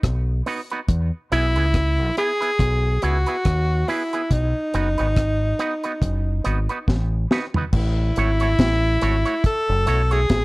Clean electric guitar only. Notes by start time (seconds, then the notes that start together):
0.46 B3 D#4 F#4 B4
0.71 B3 D#4 F#4 B4
1.32 B3 E4 G#4 B4
1.56 B3 E4 G#4 B4
2.17 B3 E4 G#4 B4
2.41 B3 E4 G#4 B4
3.02 B3 E4 G#4 B4
3.27 B3 E4 G#4 B4
3.88 B3 E4 G#4 B4
4.13 B3 E4 G#4 B4
4.74 B3 D#4 F#4 B4
4.98 B3 D#4 F#4 B4
5.59 B3 D#4 F#4 B4
5.84 B3 D#4 F#4 B4
6.44 B3 D#4 F#4 B4
6.69 B3 D#4 F#4 B4
7.31 B3 D#4 F#4 B4
7.56 B3 D#4 F#4 B4
8.17 A3 E4 F#4 C#5
8.41 A3 E4 F#4 C#5
9.02 A3 E4 F#4 C#5
9.25 A3 E4 F#4 C#5
9.86 A3 E4 F#4 C#5
10.11 A3 E4 F#4 C#5